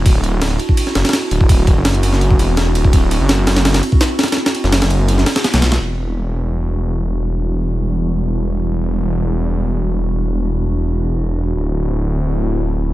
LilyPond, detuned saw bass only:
\new Staff \with { instrumentName = "Detuned saw bass" } { \clef bass \time 4/4 \key e \minor \tempo 4 = 167 d,,4. r4 fis,,16 r8. d,,8~ | d,,8. fis,,4.~ fis,,16 e,,4 d,,8~ | d,,8. fis,,4.~ fis,,16 r4. | r8. fis,,4.~ fis,,16 r8. b,,8. |
e,,1~ | e,,1~ | e,,1~ | e,,1 |
d,,1 | }